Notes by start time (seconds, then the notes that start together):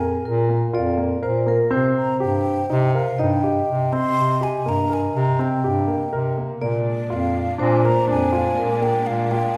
Already playing: F2 G#4 G#5
0.00 A#4
0.25 A#2 A#4
0.49 A#3
0.73 F2 F4 D5
0.97 A#3
1.22 A#2 A#4 C5
1.46 A#3 A#4
1.71 C3 C4 C5
1.97 A#5
2.20 G2 G4 G5
2.69 C3 D#4 G5
2.95 A#4 F5
3.18 G2 D#4 D#5 G5
3.44 G4
3.69 C3
3.93 C4 C6
4.18 C3
4.41 G4 G#5
4.66 G2 A#3 A#5
4.90 A#4 G#5
5.15 C3 A#5
5.39 C4 G5
5.64 G2 G4
5.88 A#3
6.13 C3 A#4
6.38 A#3
6.61 A#2 G#3 A#3 D4 D5
6.89 D5
7.10 F2 F4 F5
7.58 A#2 D4 C5
7.62 G#5
7.84 A#4 A#5
8.08 F2 D4 G#5
8.32 F4
8.57 A#2 A#4
8.82 A#3 G5
9.06 A#2 F5
9.31 F4 G5